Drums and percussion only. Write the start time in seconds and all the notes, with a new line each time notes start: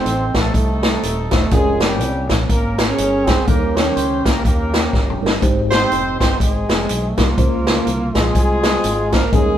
0.06 closed hi-hat
0.34 kick, snare, closed hi-hat
0.54 kick, closed hi-hat
0.83 snare, closed hi-hat
1.03 closed hi-hat
1.31 kick, snare, closed hi-hat
1.51 kick, closed hi-hat
1.80 snare, closed hi-hat
2.01 closed hi-hat
2.29 kick, snare, closed hi-hat
2.50 kick, closed hi-hat
2.78 snare, closed hi-hat
2.98 closed hi-hat
3.27 kick, snare, closed hi-hat
3.47 kick, closed hi-hat
3.77 snare, closed hi-hat
3.97 closed hi-hat
4.26 kick, snare, closed hi-hat
4.45 kick, closed hi-hat
4.74 snare, closed hi-hat
4.93 kick, snare
5.10 mid tom
5.26 snare
5.42 kick, closed hi-hat
5.72 snare, closed hi-hat
5.92 closed hi-hat
6.21 kick, snare, closed hi-hat
6.40 kick, closed hi-hat
6.69 snare, closed hi-hat
6.89 closed hi-hat
7.17 kick, snare, closed hi-hat
7.38 kick, closed hi-hat
7.67 snare, closed hi-hat
7.87 closed hi-hat
8.15 kick, snare, closed hi-hat
8.35 kick, closed hi-hat
8.63 snare, closed hi-hat
8.84 closed hi-hat
9.12 kick, snare, closed hi-hat
9.33 kick, closed hi-hat